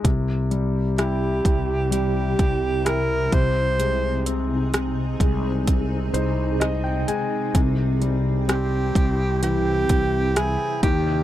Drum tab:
HH |xxxxxxxx|xxxxxxxx|xxxxxxxx|
SD |--r---r-|--r---r-|--r---r-|
BD |o--o-o-o|---oo---|o--o-o-o|